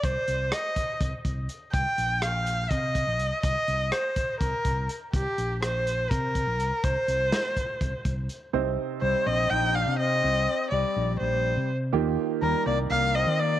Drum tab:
HH |xxxxxxx|xxxxxxx|xxxxxxx|xxxxxxx|
SD |--r----|--r----|--r----|--r----|
BD |o--ooo-|o---oo-|o--ooo-|o---oo-|

HH |xxxxxxx|-------|-------|-------|
SD |--o----|-------|-------|-------|
BD |o--ooo-|-------|-------|-------|